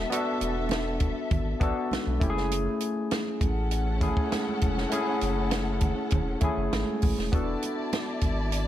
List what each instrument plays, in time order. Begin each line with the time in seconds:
Already playing: tine electric piano B3 D4 F#4 A4, string section B3 A4 E5
0.10 tine electric piano B3 D4 F#4 A4, closed hi-hat, muted conga
0.41 analog synth bass E1, closed hi-hat, muted conga
0.69 snare, closed hi-hat, high conga
1.00 kick, closed hi-hat, muted conga
1.31 analog synth bass G#1, kick, closed hi-hat, low conga
1.60 analog synth bass A1, tine electric piano B3 D4 F#4 A4, kick, closed hi-hat
1.91 analog synth bass B1, snare, closed hi-hat, high conga
2.06 analog synth bass B1, high conga
2.20 analog synth bass F#1, tine electric piano A3 C#4 E4 G4, kick, closed hi-hat, high conga
2.30 tine electric piano G#4
2.37 snare
2.51 closed hi-hat, muted conga
2.80 closed hi-hat
3.11 snare, closed hi-hat, high conga
3.41 analog synth bass A1, string section C#4 A4 F#5, kick, closed hi-hat, muted conga
3.71 closed hi-hat
4.00 tine electric piano A3 C#4 E4 G#4, kick, closed hi-hat, low conga
4.17 kick
4.32 snare, closed hi-hat, high conga
4.49 high conga
4.61 analog synth bass F1, kick, closed hi-hat, high conga
4.78 snare
4.90 tine electric piano A3 C#4 E4 G#4, closed hi-hat, muted conga
5.21 analog synth bass F#1, closed hi-hat, muted conga
5.51 snare, closed hi-hat, high conga
5.81 kick, closed hi-hat, muted conga, low conga
6.10 analog synth bass E1, kick, closed hi-hat
6.15 low conga
6.41 analog synth bass F#1, tine electric piano A3 C#4 E4 G#4, kick, closed hi-hat, low conga
6.58 analog synth bass F#1
6.73 analog synth bass G#1, snare, closed hi-hat, high conga
6.89 high conga
7.02 analog synth bass A1, kick, open hi-hat, high conga
7.18 analog synth bass E1, snare
7.32 analog synth bass E1, tine electric piano B3 D4 F#4 A4, string section E4 D5 A5, kick, closed hi-hat, muted conga
7.62 closed hi-hat, muted conga
7.93 snare, closed hi-hat, high conga
8.21 analog synth bass G#1, kick, closed hi-hat, muted conga
8.52 closed hi-hat